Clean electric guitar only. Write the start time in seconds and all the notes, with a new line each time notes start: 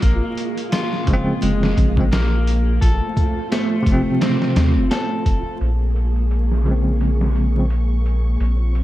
0.03 A#3
0.72 F4
1.42 G#3
2.12 A#3
2.81 A4
3.52 A3
4.21 C4
4.91 A4